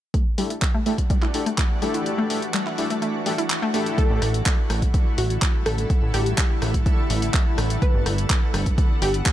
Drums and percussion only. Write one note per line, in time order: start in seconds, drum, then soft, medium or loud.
0.14 kick loud
0.14 closed hi-hat soft
0.38 open hi-hat loud
0.50 closed hi-hat medium
0.62 kick loud
0.62 clap loud
0.62 closed hi-hat soft
0.86 open hi-hat medium
0.98 kick medium
0.98 closed hi-hat medium
1.10 kick loud
1.10 closed hi-hat medium
1.22 clap soft
1.34 open hi-hat loud
1.46 closed hi-hat medium
1.58 kick loud
1.58 clap loud
1.58 closed hi-hat soft
1.82 open hi-hat medium
1.94 closed hi-hat medium
2.06 closed hi-hat soft
2.30 open hi-hat loud
2.42 closed hi-hat medium
2.54 clap loud
2.54 closed hi-hat soft
2.66 clap soft
2.78 open hi-hat medium
2.90 closed hi-hat medium
3.02 closed hi-hat soft
3.26 open hi-hat loud
3.38 closed hi-hat medium
3.50 clap loud
3.50 closed hi-hat soft
3.74 open hi-hat medium
3.86 closed hi-hat medium
3.98 kick loud
3.98 closed hi-hat medium
4.22 cross-stick medium
4.22 open hi-hat loud
4.34 closed hi-hat medium
4.46 kick loud
4.46 clap loud
4.46 closed hi-hat medium
4.70 cross-stick medium
4.70 open hi-hat medium
4.82 kick medium
4.82 closed hi-hat medium
4.94 kick loud
4.94 closed hi-hat medium
5.18 open hi-hat loud
5.30 closed hi-hat medium
5.42 kick loud
5.42 clap loud
5.42 closed hi-hat medium
5.66 cross-stick medium
5.66 open hi-hat medium
5.78 closed hi-hat medium
5.90 kick loud
5.90 closed hi-hat medium
6.14 cross-stick medium
6.14 open hi-hat loud
6.26 closed hi-hat medium
6.38 kick loud
6.38 clap loud
6.38 closed hi-hat medium
6.62 cross-stick medium
6.62 open hi-hat medium
6.74 kick medium
6.74 closed hi-hat medium
6.86 kick loud
6.86 closed hi-hat soft
7.10 open hi-hat loud
7.22 closed hi-hat medium
7.34 kick loud
7.34 clap loud
7.34 closed hi-hat soft
7.58 cross-stick medium
7.58 open hi-hat medium
7.70 closed hi-hat medium
7.82 kick loud
7.82 closed hi-hat soft
8.06 cross-stick medium
8.06 open hi-hat loud
8.18 closed hi-hat medium
8.30 kick loud
8.30 clap loud
8.30 closed hi-hat soft
8.54 cross-stick medium
8.54 open hi-hat medium
8.66 kick medium
8.66 closed hi-hat medium
8.78 kick loud
8.78 closed hi-hat soft
9.02 open hi-hat loud
9.14 closed hi-hat medium
9.26 kick loud
9.26 clap loud
9.26 closed hi-hat soft